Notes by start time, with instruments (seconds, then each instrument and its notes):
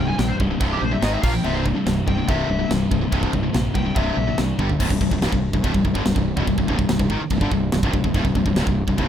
Already playing: fingered electric bass C1, distorted electric guitar C2 G2 C3
0.08 distorted electric guitar C2 G2, lead electric guitar G#5
0.18 fingered electric bass A#1, distorted electric guitar C2 G2, lead electric guitar G5, snare, crash
0.28 lead electric guitar C5
0.40 fingered electric bass C1, distorted electric guitar C2 G2 C3, kick
0.50 distorted electric guitar C2 G2
0.60 fingered electric bass C1, distorted electric guitar C2 G2 C3, kick, crash
0.72 lead electric guitar G4
0.81 fingered electric bass A#1, distorted electric guitar C2 G2, lead electric guitar C5
0.91 distorted electric guitar C2 G2, lead electric guitar E5
1.01 fingered electric bass G#1, distorted electric guitar G#2 D#3 G#3, lead electric guitar D#5, snare, crash
1.13 lead electric guitar E5
1.22 fingered electric bass A#1, distorted electric guitar A#2 F3 A#3, lead electric guitar F5, kick, crash
1.33 distorted electric guitar A#2 F3, lead electric guitar G5
1.43 fingered electric bass C1, distorted electric guitar C2 G2 C3, lead electric guitar E5, crash
1.55 lead electric guitar C5
1.64 distorted electric guitar C2 G2, kick
1.75 distorted electric guitar C2 G2
1.86 fingered electric bass C1, distorted electric guitar C2 G2, snare, crash
2.07 fingered electric bass C1, distorted electric guitar C2 G2 C3, lead electric guitar G5, kick
2.17 distorted electric guitar C2 G2
2.28 fingered electric bass C1, distorted electric guitar C2 G2 C3, lead electric guitar E5, kick, crash
2.49 fingered electric bass C1, distorted electric guitar C2 G2
2.59 distorted electric guitar C2 G2
2.69 fingered electric bass C1, distorted electric guitar C2 G2, snare, crash
2.91 fingered electric bass C1, distorted electric guitar C2 G2, kick
3.02 distorted electric guitar C2 G2
3.12 fingered electric bass C1, distorted electric guitar C2 G2 C3, kick, crash
3.23 kick
3.33 fingered electric bass C1, distorted electric guitar C2 G2, kick
3.43 distorted electric guitar C2 G2
3.53 fingered electric bass A#1, distorted electric guitar C2 G2, snare, crash
3.74 fingered electric bass C1, distorted electric guitar C2 G2 C3, lead electric guitar G5, kick
3.85 distorted electric guitar C2 G2
3.95 fingered electric bass C1, distorted electric guitar C2 G2 C3, lead electric guitar E5, kick, crash
4.16 fingered electric bass A#1, distorted electric guitar C2 G2
4.27 distorted electric guitar C2 G2
4.37 distorted electric guitar C2 G2, fingered electric bass C2, snare, crash
4.59 fingered electric bass G1, distorted electric guitar G2 D3 G3, kick
4.69 distorted electric guitar G2 D3, floor tom
4.80 fingered electric bass C1, distorted electric guitar C2 G2, kick, crash
4.90 fingered electric bass C1, distorted electric guitar C2 G2, kick
5.01 fingered electric bass C1, distorted electric guitar C2 G2, kick
5.11 fingered electric bass C1, distorted electric guitar C2 G2, kick
5.21 fingered electric bass C#1, distorted electric guitar C#2 G#2, snare, crash
5.32 fingered electric bass C1, distorted electric guitar C2 G2, kick
5.53 fingered electric bass C1, distorted electric guitar C2 G2, kick
5.63 fingered electric bass C1, distorted electric guitar C2 G2, kick, crash
5.74 fingered electric bass C1, distorted electric guitar C2 G2, kick
5.85 fingered electric bass C1, distorted electric guitar C2 G2, kick
5.94 fingered electric bass G1, distorted electric guitar G2 D3, kick
6.05 fingered electric bass C1, distorted electric guitar C2 G2, snare, crash
6.15 fingered electric bass C1, distorted electric guitar C2 G2, kick
6.36 fingered electric bass E1, distorted electric guitar E2 B2, kick
6.47 fingered electric bass C1, distorted electric guitar C2 G2, kick, crash
6.58 fingered electric bass C1, distorted electric guitar C2 G2, kick
6.68 fingered electric bass C1, distorted electric guitar C2 G2, kick
6.79 fingered electric bass C1, distorted electric guitar C2 G2, kick
6.89 fingered electric bass C1, distorted electric guitar C2 G2, snare, crash
6.99 fingered electric bass C1, distorted electric guitar C2 G2, kick
7.10 fingered electric bass G#1, distorted electric guitar G#2 D#3, kick
7.21 muted fingered electric bass stroke, muted distorted electric guitar stroke
7.30 fingered electric bass C1, distorted electric guitar C2 G2, kick, crash
7.41 fingered electric bass G1, distorted electric guitar G2 D3, kick
7.51 fingered electric bass C1, distorted electric guitar C2 G2, kick
7.72 fingered electric bass C1, distorted electric guitar C2 G2, snare, crash
7.83 fingered electric bass C1, distorted electric guitar C2 G2, kick
7.93 fingered electric bass C1, distorted electric guitar C2 G2, kick
8.04 fingered electric bass C1, distorted electric guitar C2 G2, kick
8.14 fingered electric bass C1, distorted electric guitar C2 G2, kick, crash
8.25 fingered electric bass C1, distorted electric guitar C2 G2, kick
8.35 fingered electric bass C1, distorted electric guitar C2 G2, kick
8.46 fingered electric bass C1, distorted electric guitar C2 G2, kick
8.56 fingered electric bass C#1, distorted electric guitar C#2 G#2, snare, crash
8.67 fingered electric bass C1, distorted electric guitar C2 G2, kick
8.88 fingered electric bass C1, distorted electric guitar C2 G2, kick
8.98 fingered electric bass C1, distorted electric guitar C2 G2, kick, crash